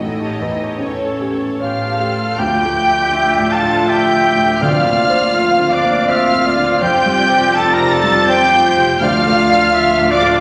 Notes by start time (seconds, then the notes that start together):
0.00 A1 A2 D#4 E4 A4 D#5 G5
0.20 G4 C#5 A5
0.40 E2 E4 A4 G5
0.60 G4 C#5 A5
0.79 A1 A2 C#4 A4 C#5 G5
1.00 A5
1.21 G4 G5
1.41 A5
1.60 A1 A2 F4 G4 C#5 F5 G5 F6
1.81 A5
1.99 G4 A4 G5
2.18 A5
2.37 D2 F3 D4 F4 G4 G5 G6
2.64 A3
2.89 E5
3.14 F4 E5
3.38 A2
3.51 A4 F5 A5 A6
3.63 A3
3.87 G4 E5 G5 G6
4.13 F4
4.37 A2
4.61 D2 D3 C4 F4 D5 F5 F6
4.85 A#3
5.10 C5
5.34 F4 F5
5.58 D3
5.72 D4 D5 D6
5.84 A#3
6.08 F4 C5 E5 F5 F6
6.34 F4
6.46 D5
6.57 D3
6.81 F1 F2 F3 G4 C5 G5 G6
7.06 G3
7.19 D5
7.30 C5
7.54 F4 A4 A5 A6
7.73 A#4 A#5 A#6
7.80 C3
7.91 A4 A5 A6
8.03 G3
8.28 G4 C5 G5 G6
8.53 F4
8.76 C3
9.00 D2 D3 D4 F4 D5 F5 F6
9.26 A3
9.50 D5
9.74 F3 F4 E5
9.99 A2
10.11 D4 D5 F5 D6
10.22 A3